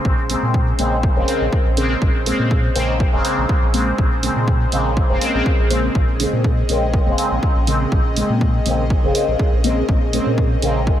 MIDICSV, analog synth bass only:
0, 0, Header, 1, 2, 480
1, 0, Start_track
1, 0, Key_signature, -5, "minor"
1, 0, Tempo, 491803
1, 50, Time_signature, 4, 2, 24, 8
1, 10736, End_track
2, 0, Start_track
2, 0, Title_t, "Analog synth bass"
2, 0, Program_c, 0, 38
2, 49, Note_on_c, 0, 34, 98
2, 351, Note_off_c, 0, 34, 0
2, 416, Note_on_c, 0, 46, 101
2, 711, Note_off_c, 0, 46, 0
2, 770, Note_on_c, 0, 34, 83
2, 1071, Note_off_c, 0, 34, 0
2, 1136, Note_on_c, 0, 29, 88
2, 1213, Note_off_c, 0, 29, 0
2, 1375, Note_on_c, 0, 34, 85
2, 1453, Note_off_c, 0, 34, 0
2, 1615, Note_on_c, 0, 34, 92
2, 1911, Note_off_c, 0, 34, 0
2, 1969, Note_on_c, 0, 34, 100
2, 2271, Note_off_c, 0, 34, 0
2, 2335, Note_on_c, 0, 46, 98
2, 2631, Note_off_c, 0, 46, 0
2, 2690, Note_on_c, 0, 34, 82
2, 2991, Note_off_c, 0, 34, 0
2, 3055, Note_on_c, 0, 29, 89
2, 3133, Note_off_c, 0, 29, 0
2, 3296, Note_on_c, 0, 34, 81
2, 3373, Note_off_c, 0, 34, 0
2, 3535, Note_on_c, 0, 34, 90
2, 3831, Note_off_c, 0, 34, 0
2, 3889, Note_on_c, 0, 34, 97
2, 4191, Note_off_c, 0, 34, 0
2, 4255, Note_on_c, 0, 46, 96
2, 4551, Note_off_c, 0, 46, 0
2, 4610, Note_on_c, 0, 34, 84
2, 4911, Note_off_c, 0, 34, 0
2, 4975, Note_on_c, 0, 29, 90
2, 5053, Note_off_c, 0, 29, 0
2, 5215, Note_on_c, 0, 34, 84
2, 5293, Note_off_c, 0, 34, 0
2, 5456, Note_on_c, 0, 34, 89
2, 5751, Note_off_c, 0, 34, 0
2, 5809, Note_on_c, 0, 34, 99
2, 6111, Note_off_c, 0, 34, 0
2, 6176, Note_on_c, 0, 46, 98
2, 6471, Note_off_c, 0, 46, 0
2, 6530, Note_on_c, 0, 34, 83
2, 6831, Note_off_c, 0, 34, 0
2, 6896, Note_on_c, 0, 29, 92
2, 6973, Note_off_c, 0, 29, 0
2, 7137, Note_on_c, 0, 34, 87
2, 7214, Note_off_c, 0, 34, 0
2, 7376, Note_on_c, 0, 34, 93
2, 7671, Note_off_c, 0, 34, 0
2, 7730, Note_on_c, 0, 34, 97
2, 8031, Note_off_c, 0, 34, 0
2, 8097, Note_on_c, 0, 46, 98
2, 8392, Note_off_c, 0, 46, 0
2, 8450, Note_on_c, 0, 34, 85
2, 8751, Note_off_c, 0, 34, 0
2, 8817, Note_on_c, 0, 29, 89
2, 8894, Note_off_c, 0, 29, 0
2, 9056, Note_on_c, 0, 34, 87
2, 9133, Note_off_c, 0, 34, 0
2, 9297, Note_on_c, 0, 34, 97
2, 9592, Note_off_c, 0, 34, 0
2, 9649, Note_on_c, 0, 34, 97
2, 9951, Note_off_c, 0, 34, 0
2, 10016, Note_on_c, 0, 46, 97
2, 10311, Note_off_c, 0, 46, 0
2, 10370, Note_on_c, 0, 34, 83
2, 10671, Note_off_c, 0, 34, 0
2, 10736, End_track
0, 0, End_of_file